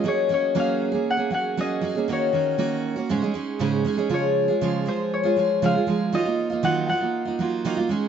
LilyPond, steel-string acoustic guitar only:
\new Staff \with { instrumentName = "Steel-string acoustic guitar" } { \time 4/4 \key des \major \tempo 4 = 119 <ges bes des' aes'>8 <ges bes des' aes'>8 <ges bes des' aes'>8. <bes des' aes'>8 <bes des' aes'>16 <ges bes des' aes'>8 <ges bes des' aes'>8 <ges bes des' aes'>16 <bes des' aes'>16 | <ees bes des' ges'>8 <ees bes des' ges'>8 <ees bes des' ges'>8. <bes des' ges'>16 <aes, des aes des' ees' aes'>16 <aes des' ees' aes'>16 <aes des' ees' aes'>8 <aes, des aes des' ees' aes'>8 <aes des' ees' aes'>16 <aes des' ees' aes'>16 | <des f aes f' aes'>8. <aes f' aes'>16 <des f aes f' aes'>8 <f aes f' aes'>8. <aes f' aes'>16 <f aes f' aes'>8 <des f aes f' aes'>16 <aes f' aes'>16 <f aes f' aes'>8 | <ees ges bes ees' f'>16 <bes ees' f'>8 <bes ees' f'>16 <ees ges bes ees' f'>8 <ges bes ees' f'>16 <bes ees' f'>8 <bes ees' f'>16 <ges bes ees' f'>8 <ees ges bes ees' f'>16 <bes ees' f'>16 <aes des' ees' aes'>8 | }